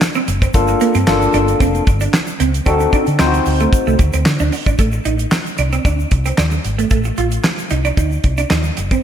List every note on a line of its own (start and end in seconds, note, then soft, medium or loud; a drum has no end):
0.01 snare loud
0.01 clap medium
0.01 shaker medium
0.14 0.23 C4 medium
0.14 shaker medium
0.28 0.46 F#1 medium
0.28 muted clean electric guitar stroke soft
0.28 closed hi-hat medium
0.28 shaker medium
0.42 0.50 C4 medium
0.42 kick loud
0.42 closed hi-hat medium
0.42 shaker medium
0.54 0.73 G1 loud
0.54 0.92 A#3 medium
0.54 0.92 D4 medium
0.54 0.92 F4 medium
0.54 0.93 A4 medium
0.54 kick loud
0.54 closed hi-hat loud
0.54 shaker medium
0.67 muted clean electric guitar stroke soft
0.67 closed hi-hat soft
0.67 shaker medium
0.80 0.90 A#3 medium
0.80 closed hi-hat medium
0.80 shaker medium
0.94 1.03 G2 medium
0.94 1.03 C4 medium
0.94 closed hi-hat medium
0.94 shaker soft
1.07 1.26 G1 loud
1.07 1.82 A#3 medium
1.07 1.82 D4 medium
1.07 1.82 F4 medium
1.07 1.83 A4 loud
1.07 snare loud
1.07 clap loud
1.07 shaker medium
1.22 shaker medium
1.33 1.52 G1 loud
1.33 1.43 D4 medium
1.33 closed hi-hat medium
1.33 shaker soft
1.48 closed hi-hat soft
1.48 shaker soft
1.60 1.79 F1 loud
1.60 1.69 C4 medium
1.60 kick loud
1.60 closed hi-hat loud
1.60 shaker medium
1.75 closed hi-hat soft
1.75 shaker medium
1.87 2.06 G1 loud
1.87 muted clean electric guitar stroke soft
1.87 kick loud
1.87 closed hi-hat medium
1.87 shaker medium
2.00 2.09 D4 medium
2.00 closed hi-hat medium
2.00 shaker medium
2.14 snare loud
2.14 clap medium
2.14 shaker medium
2.27 closed hi-hat soft
2.27 shaker medium
2.40 2.59 C#2 medium
2.40 2.49 C4 medium
2.40 closed hi-hat medium
2.40 shaker medium
2.54 closed hi-hat medium
2.54 shaker medium
2.66 2.85 D2 loud
2.66 3.04 C4 medium
2.66 2.75 D4 loud
2.66 3.04 D#4 medium
2.66 3.05 F#4 medium
2.66 3.05 A4 medium
2.66 kick loud
2.66 closed hi-hat loud
2.66 shaker medium
2.80 muted clean electric guitar stroke soft
2.80 closed hi-hat soft
2.80 shaker medium
2.93 3.02 D4 medium
2.93 kick medium
2.93 closed hi-hat medium
2.93 shaker medium
3.07 3.16 D3 loud
3.07 closed hi-hat medium
3.07 shaker medium
3.19 3.38 D2 loud
3.19 3.94 C4 medium
3.19 3.29 C4 medium
3.19 3.95 D#4 medium
3.19 3.26 F4 medium
3.19 3.95 C5 loud
3.19 snare loud
3.19 clap loud
3.19 shaker medium
3.26 3.98 F#4 medium
3.34 muted clean electric guitar stroke soft
3.34 closed hi-hat soft
3.34 shaker medium
3.46 3.65 D2 medium
3.46 open hi-hat medium
3.46 shaker medium
3.60 3.68 A3 medium
3.60 closed hi-hat soft
3.60 shaker soft
3.73 kick loud
3.73 closed hi-hat medium
3.73 shaker medium
3.87 3.96 C2 loud
3.87 3.95 A3 medium
3.87 shaker medium
3.99 4.09 D2 medium
3.99 muted clean electric guitar stroke soft
3.99 kick medium
3.99 closed hi-hat medium
3.99 shaker medium
4.13 4.22 D2 medium
4.13 4.22 C4 medium
4.13 closed hi-hat medium
4.13 shaker medium
4.26 4.36 D3 loud
4.26 snare loud
4.26 clap loud
4.26 shaker medium
4.39 4.49 D2 medium
4.39 4.48 D4 medium
4.39 shaker medium
4.52 muted clean electric guitar stroke soft
4.52 open hi-hat medium
4.52 shaker medium
4.66 4.75 G#1 medium
4.66 4.75 D4 medium
4.66 kick medium
4.66 closed hi-hat medium
4.66 shaker medium
4.78 4.97 A1 medium
4.78 4.88 A3 medium
4.78 kick loud
4.78 closed hi-hat medium
4.78 shaker medium
4.92 muted clean electric guitar stroke soft
4.92 shaker medium
5.05 5.24 A1 loud
5.05 5.14 D#4 medium
5.05 closed hi-hat medium
5.05 shaker medium
5.19 closed hi-hat medium
5.19 shaker soft
5.31 muted clean electric guitar stroke soft
5.31 snare loud
5.31 clap medium
5.31 shaker medium
5.46 closed hi-hat soft
5.46 shaker soft
5.58 5.77 C2 medium
5.58 5.68 D4 medium
5.58 closed hi-hat medium
5.58 shaker soft
5.73 5.81 C4 medium
5.73 closed hi-hat soft
5.73 shaker soft
5.85 6.04 D2 medium
5.85 5.94 D4 medium
5.85 kick loud
5.85 closed hi-hat medium
5.85 shaker medium
6.00 shaker soft
6.11 6.30 C2 medium
6.11 muted clean electric guitar stroke soft
6.11 kick medium
6.11 closed hi-hat medium
6.25 6.34 C4 medium
6.25 closed hi-hat medium
6.25 shaker medium
6.38 6.57 D#2 medium
6.38 6.47 D4 medium
6.38 snare loud
6.38 clap medium
6.38 shaker medium
6.51 muted clean electric guitar stroke soft
6.51 shaker medium
6.64 6.83 G#1 medium
6.64 closed hi-hat medium
6.64 shaker soft
6.78 6.87 A3 medium
6.78 closed hi-hat medium
6.78 shaker soft
6.90 7.10 A1 loud
6.90 7.00 A3 medium
6.90 kick loud
6.90 closed hi-hat medium
6.90 shaker medium
7.04 muted clean electric guitar stroke soft
7.04 closed hi-hat soft
7.04 shaker medium
7.17 7.36 A1 loud
7.17 7.27 F4 medium
7.17 closed hi-hat medium
7.17 shaker soft
7.31 closed hi-hat medium
7.31 shaker soft
7.44 muted clean electric guitar stroke soft
7.44 snare loud
7.44 clap medium
7.44 shaker medium
7.59 closed hi-hat soft
7.59 shaker soft
7.70 7.90 C2 medium
7.70 7.80 D#4 medium
7.70 closed hi-hat medium
7.70 shaker soft
7.85 7.93 D4 medium
7.85 closed hi-hat soft
7.85 shaker soft
7.97 8.16 D2 medium
7.97 8.06 D#4 medium
7.97 kick loud
7.97 closed hi-hat medium
7.97 shaker medium
8.12 shaker soft
8.24 8.43 C2 medium
8.24 muted clean electric guitar stroke soft
8.24 kick medium
8.24 closed hi-hat medium
8.38 8.46 D4 medium
8.38 closed hi-hat medium
8.38 shaker medium
8.50 8.69 D#2 medium
8.50 8.60 D#4 medium
8.50 snare loud
8.50 clap medium
8.50 shaker medium
8.64 shaker soft
8.77 8.96 F#1 medium
8.77 muted clean electric guitar stroke soft
8.77 closed hi-hat medium
8.77 shaker medium
8.91 8.99 C4 medium
8.91 kick medium
8.91 closed hi-hat medium
8.91 shaker soft